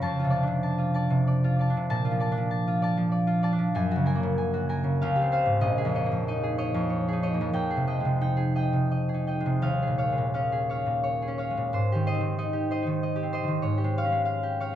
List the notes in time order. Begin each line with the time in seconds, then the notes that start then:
Already playing: F4
0.02 F2 A5
0.19 F4
0.24 C3
0.30 D5 A5
0.43 D4
0.47 C3
0.63 A5
0.78 F4
0.94 D5 A5
1.10 C3
1.27 D5
1.44 F4
1.59 D5 A5
1.70 D4
1.77 C3
1.90 A#2 A5
2.05 F4
2.11 F3
2.20 D5 A5
2.32 D4
2.38 F3
2.51 A5
2.67 F4
2.82 D5 A5
2.97 F3
3.12 D5
3.27 F4
3.43 D5 A5
3.52 D4
3.58 F3
3.75 F#2 G#5
3.91 F#4
3.96 C#3
4.06 A#4 G#5
4.15 A#3
4.23 C#3
4.38 G#5
4.54 F#4
4.69 A#4 G#5
4.84 C#3
5.02 C#2 F5
5.16 G4
5.22 C4
5.32 C5 F5
5.46 G#2
5.61 A#1 D#5
5.78 G#4
5.85 F2
5.94 C#5 D#5
6.06 A#3
6.12 F2
6.28 D#4 D#5
6.43 G#4
6.58 C#5 D#5
6.74 F2
6.89 C#5
7.08 G#4
7.13 D#4
7.23 C#5 D#5
7.34 A#3
7.41 F2
7.53 F2 G5
7.70 G#4
7.77 C3
7.87 D#5 G5
8.00 G#3
8.05 C3
8.21 D#4 G5
8.37 G#4
8.55 D#5 G5
8.73 C3
8.91 D#5
9.09 G#4
9.14 D#4
9.27 D#5 G5
9.40 G#3
9.46 C3
9.62 D#2 F5
9.82 G#4
9.87 A#2
9.98 C#5 F5
10.12 G#3
10.18 A#2
10.34 C#4 F5
10.52 G#4
10.69 C#5 F5
10.86 A#2
11.03 C#5
11.22 G#4
11.28 C#4
11.38 C#5 F5
11.51 G#3
11.57 A#2
11.73 G#2 C5
11.92 D#3 G4
12.07 C5 D#5
12.14 C4
12.21 D#3
12.38 D#4 D#5
12.53 G4
12.71 C5 D#5
12.82 D#4
12.87 D#3
13.03 D#5
13.16 G4
13.23 C4
13.33 C5 D#5
13.43 D#3
13.48 D#3
13.62 G#2 C#5
13.78 G4
13.84 G#3
13.98 C#5 F5
14.05 C#4
14.12 G#3
14.25 F5
14.43 G4
14.60 C#5 F5